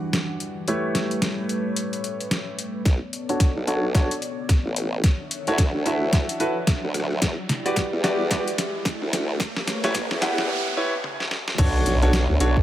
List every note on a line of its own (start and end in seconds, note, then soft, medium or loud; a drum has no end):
0.00 0.65 E3 medium
0.00 0.66 E3 medium
0.00 2.82 G3 medium
0.00 0.66 D4 medium
0.00 0.65 F#4 medium
0.00 0.65 G4 medium
0.00 0.65 B4 medium
0.00 0.65 D5 medium
0.00 0.66 F#5 medium
0.13 snare loud
0.13 closed hi-hat medium
0.40 closed hi-hat medium
0.67 2.84 A3 medium
0.67 2.83 A3 medium
0.67 2.83 E4 medium
0.67 2.83 G4 medium
0.67 2.84 B4 medium
0.67 2.83 B4 medium
0.67 2.84 C#5 medium
0.67 2.83 C#5 medium
0.67 closed hi-hat medium
0.95 snare medium
0.95 closed hi-hat medium
1.11 closed hi-hat soft
1.22 snare loud
1.22 closed hi-hat medium
1.49 closed hi-hat medium
1.76 closed hi-hat medium
1.93 closed hi-hat medium
2.04 closed hi-hat medium
2.20 closed hi-hat soft
2.31 snare loud
2.31 closed hi-hat medium
2.59 closed hi-hat medium
2.85 2.99 B1 loud
2.85 5.02 B3 medium
2.85 5.02 A4 medium
2.85 7.18 C#5 medium
2.85 5.02 D5 medium
2.85 kick loud
2.85 snare soft
2.85 closed hi-hat medium
2.85 riser medium
3.13 closed hi-hat medium
3.29 3.48 D4 medium
3.29 3.48 F#4 medium
3.29 3.48 A4 medium
3.29 3.48 C#5 medium
3.29 closed hi-hat soft
3.40 kick loud
3.40 snare soft
3.40 closed hi-hat medium
3.56 4.08 B1 medium
3.67 3.83 D4 medium
3.67 3.83 F#4 medium
3.67 3.83 A4 medium
3.67 3.83 C#5 medium
3.67 closed hi-hat medium
3.95 4.10 D4 medium
3.95 4.10 F#4 medium
3.95 4.10 A4 medium
3.95 4.10 C#5 loud
3.95 kick loud
3.95 cross-stick soft
3.95 snare soft
3.95 closed hi-hat medium
4.11 closed hi-hat medium
4.22 closed hi-hat medium
4.49 kick medium
4.49 snare medium
4.49 closed hi-hat medium
4.65 5.02 A1 loud
4.76 closed hi-hat medium
5.04 7.20 D4 medium
5.04 7.20 E5 medium
5.04 7.20 F#5 medium
5.04 kick loud
5.04 snare medium
5.04 closed hi-hat medium
5.31 closed hi-hat medium
5.47 5.72 D2 loud
5.47 5.58 E4 medium
5.47 5.58 F#4 medium
5.47 5.58 A4 medium
5.47 5.58 C#5 loud
5.47 closed hi-hat soft
5.58 kick loud
5.58 snare medium
5.58 closed hi-hat medium
5.74 6.27 D2 medium
5.86 6.38 E4 medium
5.86 6.38 F#4 medium
5.86 6.38 A4 medium
5.86 6.38 E5 medium
5.86 closed hi-hat medium
6.13 kick loud
6.13 snare medium
6.13 closed hi-hat medium
6.29 closed hi-hat medium
6.40 6.55 E4 medium
6.40 6.55 F#4 medium
6.40 6.55 A4 medium
6.40 6.55 B4 medium
6.40 closed hi-hat medium
6.67 kick loud
6.67 snare medium
6.67 closed hi-hat medium
6.84 7.20 D2 loud
6.94 cross-stick soft
6.94 closed hi-hat medium
7.00 cross-stick soft
7.04 cross-stick soft
7.11 cross-stick soft
7.13 cross-stick soft
7.18 7.36 E2 loud
7.18 9.38 E4 medium
7.18 10.46 G4 medium
7.18 9.38 D5 medium
7.18 kick loud
7.18 cross-stick soft
7.18 snare medium
7.18 closed hi-hat medium
7.49 snare medium
7.49 closed hi-hat medium
7.65 7.85 F#4 medium
7.65 7.85 G4 medium
7.65 7.85 B4 medium
7.65 7.85 D5 medium
7.65 closed hi-hat soft
7.76 kick loud
7.76 snare medium
7.76 closed hi-hat medium
7.93 8.45 E2 medium
8.04 8.19 F#4 medium
8.04 8.19 G4 medium
8.04 8.19 B4 medium
8.04 8.19 D5 loud
8.04 snare medium
8.04 closed hi-hat medium
8.31 8.46 F#4 medium
8.31 8.46 G4 medium
8.31 8.46 B4 medium
8.31 8.46 D5 loud
8.31 kick loud
8.31 snare medium
8.31 closed hi-hat medium
8.48 closed hi-hat medium
8.58 snare medium
8.58 closed hi-hat medium
8.85 kick loud
8.85 snare medium
8.85 closed hi-hat medium
9.02 9.39 D2 loud
9.13 snare medium
9.13 closed hi-hat medium
9.39 10.48 A3 medium
9.39 10.48 B4 medium
9.39 10.48 C#5 medium
9.39 kick loud
9.39 snare medium
9.39 closed hi-hat medium
9.39 noise sweep medium
9.57 snare medium
9.68 snare loud
9.68 closed hi-hat medium
9.84 10.09 A1 loud
9.84 9.94 E4 medium
9.84 9.94 G4 medium
9.84 9.94 B4 medium
9.84 9.94 C#5 loud
9.84 snare medium
9.84 closed hi-hat soft
9.94 kick loud
9.94 snare loud
9.94 closed hi-hat medium
10.11 10.49 E2 loud
10.11 snare medium
10.22 10.74 E4 medium
10.22 10.74 G4 medium
10.22 10.74 B4 medium
10.22 10.74 F#5 medium
10.22 snare loud
10.22 closed hi-hat medium
10.38 snare medium
10.77 10.92 E4 medium
10.77 10.92 G4 medium
10.77 10.92 B4 medium
10.77 10.92 C#5 medium
11.04 high tom medium
11.20 snare medium
11.31 snare medium
11.48 snare medium
11.58 11.84 B1 loud
11.58 12.63 B3 medium
11.58 12.63 D4 medium
11.58 11.96 D4 loud
11.58 11.96 F#4 loud
11.58 12.63 A4 medium
11.58 11.96 A4 medium
11.58 12.63 C#5 medium
11.58 11.96 C#5 loud
11.58 kick loud
11.58 closed hi-hat medium
11.58 crash loud
11.58 impact medium
11.86 12.27 B1 medium
11.86 closed hi-hat medium
12.02 12.21 D4 medium
12.02 12.21 F#4 medium
12.02 12.21 A4 medium
12.02 12.21 C#5 medium
12.02 closed hi-hat soft
12.13 snare loud
12.13 closed hi-hat medium
12.30 12.39 D2 loud
12.40 12.63 B1 loud
12.40 12.56 D4 medium
12.40 12.56 F#4 medium
12.40 12.56 A4 medium
12.40 12.56 C#5 loud
12.40 closed hi-hat medium
12.57 kick medium